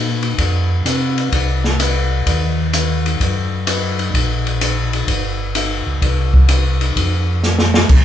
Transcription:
Already playing: tonewheel organ A#2
0.23 ride
0.38 tonewheel organ F2, kick, ride
0.85 tonewheel organ C3, hi-hat pedal, ride
1.18 ride
1.32 tonewheel organ C2, kick, ride
1.64 snare
1.80 hi-hat pedal, ride
2.26 tonewheel organ D#2, kick, ride
2.73 hi-hat pedal, ride
3.06 ride
3.20 tonewheel organ F#2, kick, ride
3.67 hi-hat pedal, ride
3.99 ride
4.14 tonewheel organ A#1, kick, ride
4.47 ride
4.61 hi-hat pedal, ride
4.93 ride
5.07 tonewheel organ G1, kick, ride
5.55 hi-hat pedal, ride
5.86 tonewheel organ C#2
6.02 tonewheel organ C2, kick, ride
6.34 kick
6.49 hi-hat pedal, ride
6.81 ride
6.96 tonewheel organ F2, kick, ride
7.43 snare, hi-hat pedal
7.59 snare
7.74 snare
7.89 tonewheel organ A#1, kick, crash

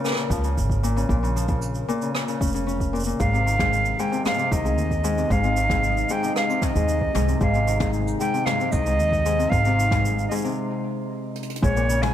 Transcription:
Already playing: ambient pad C#3 A#3 F4 A#4
0.05 harp A#2, cross-stick, shaker
0.07 cross-stick
0.10 cross-stick
0.13 cross-stick
0.15 harp C#3, cross-stick, shaker
0.30 upright bass C#2, harp F3, kick, shaker
0.44 harp C#3, shaker
0.57 upright bass G#1, shaker
0.70 kick, shaker
0.83 harp A#2, shaker
0.96 harp C#3, shaker
1.09 upright bass A#1, harp A#2, kick, shaker
1.23 harp C#3, shaker
1.36 harp F3, shaker
1.48 harp C#3, kick, shaker
1.62 shaker
1.75 shaker
1.88 harp A#2, shaker
2.02 harp C#3, shaker
2.15 harp A#2, cross-stick, shaker
2.28 harp C#3, shaker
2.40 upright bass F1, harp C#4, kick, shaker
2.44 shaker
2.47 shaker
2.49 shaker
2.52 harp C#3, shaker
2.55 shaker
2.67 harp C#4, shaker
2.80 kick, shaker
2.93 harp A#2, shaker
3.00 shaker
3.04 harp A#2, shaker
3.08 shaker
3.19 upright bass G#1, harp G#2, ambient pad C3, flute F5, kick, shaker
3.25 ambient pad G#3
3.33 harp C3, shaker
3.42 ambient pad D#5
3.46 harp D#3, ambient pad D#4, shaker
3.59 harp G#2, kick, mid tom, shaker
3.73 shaker
3.85 shaker
3.99 harp G#2, flute G5, shaker
4.12 harp C3, shaker
4.25 harp G#2, flute F5, cross-stick, mid tom, shaker
4.30 shaker
4.34 shaker
4.38 harp C3, shaker
4.51 upright bass C2, harp D#3, flute D#5, kick, shaker
4.65 harp G#2, shaker
4.78 upright bass D#2, shaker
4.91 kick, shaker
5.04 harp G#2, shaker
5.17 harp C3, shaker
5.30 upright bass G#1, harp G#2, flute F5, kick, shaker
5.44 harp C3, shaker
5.57 harp D#3, shaker
5.70 harp G#2, kick, mid tom, shaker
5.83 shaker
5.97 shaker
6.09 harp G#2, flute G5, shaker
6.23 harp C3, shaker
6.36 harp G#2, flute F5, cross-stick, shaker
6.50 harp C3, shaker
6.62 harp D#3, flute D#5, kick, mid tom, shaker
6.76 upright bass D#2, harp G#2, shaker
6.88 shaker
7.01 kick
7.15 upright bass C2, harp G#2, mid tom, shaker
7.28 harp C3, shaker
7.41 upright bass G#1, harp G#2, flute F5, kick, shaker
7.54 harp C3, shaker
7.67 harp D#3, shaker
7.80 harp G#2, kick, mid tom, shaker
7.93 shaker
8.08 shaker
8.20 harp G#2, flute G5, shaker
8.34 harp C3, shaker
8.46 harp G#2, flute F5, cross-stick, mid tom, shaker
8.60 harp C3, shaker
8.72 upright bass C2, harp D#3, flute D#5, kick, shaker
8.86 harp G#2, shaker
9.00 upright bass D#2, shaker
9.12 kick, shaker
9.26 harp G#2, shaker
9.39 harp C3, shaker
9.50 upright bass G#1, harp G#2, flute F5, kick, shaker
9.65 harp C3, shaker
9.79 harp D#3, shaker
9.91 harp G#2, kick, mid tom, shaker
10.05 shaker
10.19 shaker
10.28 harp G#2, flute D#5, shaker
10.35 shaker
10.38 shaker
10.41 harp C3, shaker
10.45 shaker
10.48 shaker
10.55 shaker
11.35 closed hi-hat
11.42 closed hi-hat
11.50 closed hi-hat
11.56 closed hi-hat
11.62 upright bass A#1, harp G#2, ambient pad C#3, flute C#5, kick, shaker
11.77 harp A#2, shaker
11.89 harp C#3, shaker
11.94 ambient pad F4
11.98 ambient pad A#3
12.02 harp G#2, flute G#5, mid tom, shaker

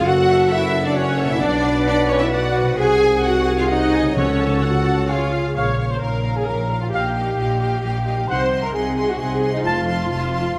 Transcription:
Already playing: harp F#2 A3 C#4 E4
0.01 harp F#4, flute F#5
0.06 double bass section F#1, tuba F#1, cello section F#4, french horn section F#4, viola section F#4 F#5, clarinet A4, violin section F#5
0.28 viola section A4 E5
0.50 cello section E4, french horn section E4, viola section F#4 F#5, violin section E5
0.73 viola section A4 E5
0.83 french horn section D4, cello section D4, violin section D5
0.94 french horn section C#4, cello section C#4, viola section F#4 F#5, violin section C#5
1.17 viola section A4 E5
1.24 harp B2
1.29 harp B3, cello section E4, french horn section E4, violin section E5
1.33 harp D4
1.38 double bass section B1, tuba B1, french horn section D4, cello section D4, harp F#4, clarinet B4, viola section D5 F#5, violin section D5
1.63 viola section B4 D5
1.86 cello section D4, french horn section D4, viola section D5 F#5, violin section D5
2.08 cello section C#4, french horn section C#4, viola section B4 D5, violin section C#5
2.19 cello section E4, french horn section E4, violin section E5
2.32 cello section F#4, french horn section F#4, viola section D5 F#5, violin section F#5
2.54 viola section B4 D5
2.61 harp C3
2.65 harp G#3
2.70 harp D#4
2.75 double bass section C2, harp F#4, viola section F#4 F#5, cello section G#4, clarinet G#4, violin section G#5
2.79 tuba C2, french horn section G#4, flute F#5
3.00 viola section G#4 G#5
3.22 viola section F#4 F#5, cello section F#4, french horn section F#4, violin section F#5
3.47 viola section G#4 G#5
3.58 cello section F4, violin section F5
3.63 french horn section F4
3.70 cello section D#4, french horn section D#4, viola section F#4 F#5, violin section D#5
3.93 viola section G#4 G#5
3.99 harp C#3
4.03 harp A3
4.08 harp C#4
4.12 harp F#4, viola section F#5
4.16 double bass section C#2, tuba C#2, timpani C#3, french horn section C#4, cello section C#4, viola section F#4, clarinet A4, violin section C#5
4.40 viola section A4 A5
4.62 viola section F#4 F#5, cello section F#4, french horn section F#4, violin section F#5
4.84 viola section A4 A5
4.92 harp C#3
4.97 harp G#3
5.01 harp C#4
5.06 viola section F4 C#5, cello section F4, harp G#4, violin section F5, flute G#5
5.10 french horn section F4, clarinet G#4, violin section F5
5.31 viola section G#4 F5
5.56 double bass section A#1, cello section A#2, harp A#2, french horn section A#3 C#4, viola section C#5, violin section F5, trumpet F5, flute C#6
5.79 harp C#4, violin section F5
5.91 viola section C5, flute C6
6.01 double bass section A#1, cello section A#2, harp D#4, viola section A#4, violin section F5, flute A#5
6.24 harp C#4, violin section F5
6.37 viola section G#4, flute G#5
6.47 double bass section A#1, cello section A#2, harp F3, viola section A#4, violin section F5, flute A#5
6.70 harp A#4, violin section F5
6.82 viola section F4, flute F5
6.91 double bass section A#1, harp A#2, cello section A#2, viola section G4, violin section D#5 F5, trumpet F5, flute G5
6.95 french horn section A#3 D#4
7.14 harp D#4, violin section D#5 F5
7.37 double bass section A#1, cello section A#2, harp F4, violin section D#5 F5
7.59 harp D#4, violin section D#5 F5
7.81 double bass section A#1, cello section A#2, harp F3, violin section D#5 F5
8.05 violin section D#5 F5, harp D#5
8.28 double bass section C2, harp C3, cello section C3, french horn section C4 D#4, viola section C5, violin section D#5 F#5 C6, trumpet F#5, flute C6
8.51 harp D#4, violin section D#5 F#5 C6
8.62 viola section A#4, flute A#5
8.73 double bass section C2, cello section C3, harp F4, viola section G#4, violin section D#5 F#5 C6, flute G#5
8.96 harp D#4, violin section D#5 F#5 C6
9.08 viola section F#4, flute F#5
9.17 double bass section C2, cello section C3, harp C4, viola section G#4, violin section D#5 F#5 C6, flute G#5
9.41 harp C5, violin section D#5 F#5 C6
9.54 viola section D#4, flute D#5
9.63 double bass section F1, cello section F2, harp A3, french horn section C4 F4, viola section F4, flute F5, violin section F5 A5 C6, trumpet A5
9.86 harp F4, violin section F5 A5 C6
10.09 double bass section F1, cello section F2, harp F#4, violin section F5 A5 C6
10.32 harp F4, violin section F5 A5 C6
10.55 violin section C6

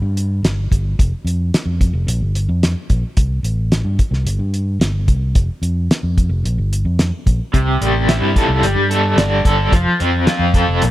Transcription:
0.02 fingered electric bass G2
0.17 closed hi-hat
0.43 fingered electric bass G1, snare, closed hi-hat
0.71 fingered electric bass G1, kick, closed hi-hat
0.99 fingered electric bass F1, kick, closed hi-hat
1.25 fingered electric bass F2, closed hi-hat
1.54 snare, closed hi-hat
1.66 fingered electric bass F2
1.81 kick, closed hi-hat
1.93 fingered electric bass F1
2.07 fingered electric bass A#1, closed hi-hat
2.21 fingered electric bass G1
2.35 closed hi-hat
2.49 fingered electric bass F2
2.63 snare, closed hi-hat
2.90 fingered electric bass A#1, kick, closed hi-hat
3.17 fingered electric bass C2, kick, closed hi-hat
3.43 fingered electric bass A1, closed hi-hat
3.72 snare, closed hi-hat
3.84 fingered electric bass G2
3.99 kick, closed hi-hat
4.11 fingered electric bass C2, snare
4.25 fingered electric bass G1, closed hi-hat
4.39 fingered electric bass G2
4.54 closed hi-hat
4.80 fingered electric bass G1, snare, closed hi-hat
5.07 fingered electric bass C2, kick, closed hi-hat
5.35 fingered electric bass F1, kick, closed hi-hat
5.62 fingered electric bass F2, closed hi-hat
5.91 snare, closed hi-hat
6.03 fingered electric bass F2
6.18 kick, closed hi-hat
6.29 fingered electric bass F1
6.44 fingered electric bass A#1, closed hi-hat
6.58 fingered electric bass G1
6.73 closed hi-hat
6.85 fingered electric bass F2
6.99 snare, closed hi-hat
7.26 fingered electric bass A#1, kick, closed hi-hat
7.54 fingered electric bass C2, overdriven electric guitar C3, kick, closed hi-hat
7.81 fingered electric bass A1, overdriven electric guitar G3, closed hi-hat
8.09 overdriven electric guitar E4, snare, closed hi-hat
8.21 fingered electric bass G2
8.36 overdriven electric guitar A4, kick, closed hi-hat
8.49 fingered electric bass C2
8.63 fingered electric bass G1, overdriven electric guitar G3, closed hi-hat
8.75 fingered electric bass G2
8.90 overdriven electric guitar A4, closed hi-hat
9.17 fingered electric bass G1, overdriven electric guitar D4, snare, closed hi-hat
9.45 fingered electric bass G1, overdriven electric guitar A4, kick, closed hi-hat
9.72 fingered electric bass F1, overdriven electric guitar F3, kick, closed hi-hat
10.00 fingered electric bass F2, overdriven electric guitar C4, closed hi-hat
10.27 overdriven electric guitar F4, snare, closed hi-hat
10.39 fingered electric bass F2
10.54 overdriven electric guitar A4, kick, closed hi-hat
10.68 fingered electric bass F1
10.82 fingered electric bass A#1, overdriven electric guitar A#2, closed hi-hat

